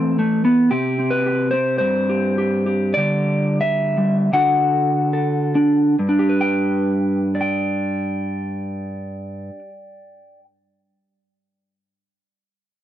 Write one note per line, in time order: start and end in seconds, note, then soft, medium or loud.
0.00 0.68 E3 medium
0.00 0.18 A3 medium
0.00 0.18 C4 soft
0.00 0.71 A4 medium
0.19 0.44 A3 medium
0.45 0.71 B3 medium
0.71 1.80 C3 medium
0.71 0.98 C4 soft
0.71 1.25 G4 medium
0.99 1.52 C4 soft
1.10 1.50 B4 medium
1.26 2.08 G4 soft
1.51 2.94 C4 soft
1.51 1.77 C5 medium
1.78 2.96 G2 medium
1.78 2.96 C5 medium
2.09 2.37 G4 soft
2.38 2.65 G4 soft
2.66 2.93 G4 soft
2.94 4.29 D3 medium
2.94 3.96 G3 soft
2.94 3.60 D5 medium
2.98 4.29 G4 soft
3.61 4.33 E5 medium
3.97 4.29 G3 soft
4.33 5.95 D3 soft
4.33 5.54 D4 soft
4.33 5.96 F#4 soft
4.33 5.12 A4 soft
4.33 6.00 F#5 medium
5.13 5.95 A4 soft
5.55 5.95 D4 soft
5.99 9.49 G2 soft
6.09 9.59 D4 soft
6.19 9.69 G4 soft
6.29 7.35 B4 soft
6.41 7.39 G5 medium
7.35 10.38 D5 soft
7.41 10.43 G5 soft